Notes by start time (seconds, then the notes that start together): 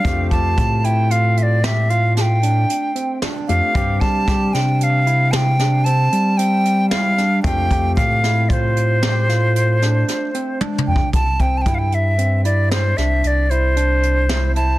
Already playing: D4 F5
0.04 F2 A3 C4 F4 G4, kick, closed hi-hat
0.30 F2 G4 A5, kick, closed hi-hat
0.58 A2, kick, closed hi-hat
0.84 E4 G5, closed hi-hat
1.11 F4 F5, closed hi-hat
1.37 E5, closed hi-hat
1.43 D5
1.64 G4 E5, snare, closed hi-hat
1.90 F4 F5, closed hi-hat
2.17 A5, snare, closed hi-hat
2.21 G5
2.43 D4, closed hi-hat
2.70 closed hi-hat
2.95 C4, closed hi-hat
3.22 D4, snare, closed hi-hat
3.48 F2 A3 C4 F4 G4 F5, closed hi-hat
3.74 G2 G3 C4 D4 G4, kick, closed hi-hat
4.00 G3 A5, kick, closed hi-hat
4.28 G3 G4, kick, snare, closed hi-hat
4.53 C3 D4 G5, snare, closed hi-hat
4.80 F5 G5, closed hi-hat
5.07 E4, closed hi-hat
5.31 A5, snare, closed hi-hat
5.35 G5
5.59 D4, snare, closed hi-hat
5.84 C4 A5, closed hi-hat
6.12 G3, closed hi-hat
6.37 C4 G5, closed hi-hat
6.65 closed hi-hat
6.90 E4 F5, snare, closed hi-hat
7.18 D4, snare, closed hi-hat
7.42 F2 A3 C4 F4 G4 G5, kick, closed hi-hat
7.71 F2 G4, kick, closed hi-hat
7.96 A2 F5, kick, closed hi-hat
8.24 E4, snare, closed hi-hat
8.49 F4 C5 D5, kick, closed hi-hat
8.76 closed hi-hat
9.03 G4, snare, closed hi-hat
9.29 F4, snare, closed hi-hat
9.56 closed hi-hat
9.82 D4, snare, closed hi-hat
10.08 snare, closed hi-hat
10.34 C4, closed hi-hat
10.61 D4, high tom
10.78 mid tom
10.87 F2 G5
10.96 kick
11.13 C2 A5, kick, closed hi-hat
11.39 C2 C4 G5, kick, closed hi-hat
11.58 A5
11.62 G5
11.66 G2 E4, kick, closed hi-hat
11.75 F5
11.79 G5
11.92 E5, closed hi-hat
12.18 C4, closed hi-hat
12.45 E4 D5, closed hi-hat
12.71 C5, snare, closed hi-hat
12.97 C2 D4 E5, snare, closed hi-hat
13.24 C2 D5 E5, closed hi-hat
13.50 E4 C5, closed hi-hat
13.77 D4, closed hi-hat
14.03 closed hi-hat
14.29 E4, snare, closed hi-hat
14.55 E4 A5, closed hi-hat